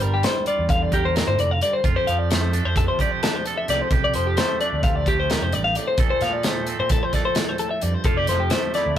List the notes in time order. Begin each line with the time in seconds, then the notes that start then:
Already playing: G2 F4
0.00 G1 G3 A#4, closed hi-hat
0.14 G4
0.23 C5, snare, closed hi-hat
0.46 F4 D5, closed hi-hat
0.59 E2
0.69 D3 F5, kick, closed hi-hat
0.82 D5
0.92 G4 A#4, kick, closed hi-hat
1.05 C5
1.14 A#2 A#4, snare, closed hi-hat
1.27 G1 C5
1.38 F1 A2 D5, closed hi-hat
1.51 F5
1.61 G2 D5, closed hi-hat
1.73 C5
1.84 F1 F2 F4, kick, closed hi-hat
1.96 G4 C5
2.07 F2 F3 F5, closed hi-hat
2.19 D5
2.31 A3 C5, snare, closed hi-hat
2.53 D4 A4, closed hi-hat
2.65 F2 C5
2.76 C3 A4, kick, closed hi-hat
2.88 C5
2.99 G4 D5, kick, closed hi-hat
3.11 C5
3.23 D4 A4, snare, closed hi-hat
3.35 C5
3.46 A4, closed hi-hat
3.58 E5
3.68 C2 F2 G4 D5, snare, closed hi-hat
3.82 C5
3.91 C2 F2 G4 A4, kick, closed hi-hat
4.04 D5
4.14 F1 F3 C5, closed hi-hat
4.27 G4
4.37 A3 C5, snare, closed hi-hat
4.61 D4 D5, closed hi-hat
4.73 D2
4.83 C3 F5, kick, closed hi-hat
4.96 D5
5.06 G4, kick, closed hi-hat
5.20 C5
5.30 F2 A#4, snare, closed hi-hat
5.42 F1 C5
5.52 A1 G2 D5, closed hi-hat
5.64 F5
5.75 A2 D5, closed hi-hat
5.88 C5
5.98 A#1 A#2 A4, kick, closed hi-hat
6.10 C5
6.21 A#2 F3 F5, snare, closed hi-hat
6.33 D5
6.43 A3 C5, snare, closed hi-hat
6.67 C4 A4, closed hi-hat
6.79 A#2 C5
6.89 F3 A4, kick, closed hi-hat
7.03 C5
7.13 A4 D5, kick, snare, closed hi-hat
7.25 C5
7.35 A#2 A4, snare, closed hi-hat
7.49 C5
7.58 A2 A4, closed hi-hat
7.71 E5
7.81 F2 G2 D5, closed hi-hat
7.94 C5
8.04 F1 F2 F4 A4, kick, closed hi-hat
8.17 G4 D5
8.27 F1 F3 C5, snare, closed hi-hat
8.40 G4
8.50 A3 C5, snare, closed hi-hat
8.74 E4 D5, snare, closed hi-hat
8.86 D2